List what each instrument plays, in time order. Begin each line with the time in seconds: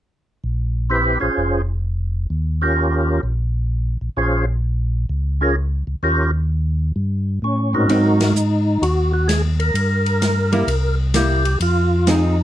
0.44 tonewheel organ A#1
0.90 tonewheel organ C4 E4 G4 B4
1.20 tonewheel organ A#1 C#4 F4 G#4 C5
1.37 tonewheel organ F1
2.30 tonewheel organ D#2
2.62 tonewheel organ C#4 F4 G4 A#4
3.23 tonewheel organ A#1
4.01 tonewheel organ A#1
4.17 tonewheel organ A#1 C#4 F4 G#4 C5
5.09 tonewheel organ C#2
5.41 tonewheel organ C#4 F4 G#4 A#4
5.87 tonewheel organ C#2
6.03 tonewheel organ D#2 C#4 F4 G4 A#4
6.96 tonewheel organ G2
7.42 tonewheel organ A2 C#4
7.73 tonewheel organ G#2 C4 D#4 F#4 A#4
7.89 tonewheel organ G#2 C4, hollow-body jazz guitar F#3 C4 D#4, ride
8.20 tonewheel organ D#4, snare, ride
8.36 hi-hat pedal
8.82 tonewheel organ D#2 F#4, ride
9.14 tonewheel organ F#4
9.28 tonewheel organ G#4, snare, hi-hat pedal, ride
9.60 tonewheel organ A#4, ride
9.74 tonewheel organ G2, ride
10.06 ride
10.22 snare, hi-hat pedal, ride
10.52 hollow-body jazz guitar G3 A#3 E4, ride
10.67 tonewheel organ C2, ride
11.14 hollow-body jazz guitar G3 A#3 E4, tonewheel organ G4, snare, hi-hat pedal, ride
11.45 ride
11.60 tonewheel organ F2 F4, ride
12.07 hollow-body jazz guitar F3 C4 D#4 G#4, tonewheel organ D#4, snare, hi-hat pedal, ride